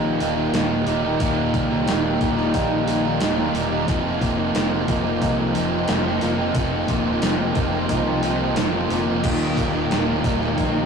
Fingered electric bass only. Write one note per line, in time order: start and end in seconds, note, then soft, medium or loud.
0.00 0.18 A#1 medium
0.20 0.52 D#1 medium
0.53 0.85 D#1 medium
0.87 1.19 D#1 medium
1.20 1.52 D#1 medium
1.54 1.86 C2 medium
1.87 2.19 D#1 medium
2.21 2.52 D#1 medium
2.54 3.18 A#1 loud
3.21 3.53 D#1 medium
3.54 3.86 E1 medium
3.88 4.20 F1 medium
4.21 4.53 F1 medium
4.55 4.87 F1 medium
4.88 5.20 F1 medium
5.22 5.54 C2 medium
5.55 5.87 F1 medium
5.89 6.21 F1 medium
6.22 6.54 F1 medium
6.55 6.87 F1 medium
6.89 7.21 D#1 medium
7.23 7.55 F1 medium
7.56 7.88 F1 medium
7.89 8.53 C2 medium
8.57 8.89 F1 medium
8.90 9.24 F1 medium
9.24 9.55 D#1 medium
9.58 9.89 D#1 medium
9.91 10.22 D#1 medium
10.24 10.56 D#1 medium
10.58 10.86 A#1 medium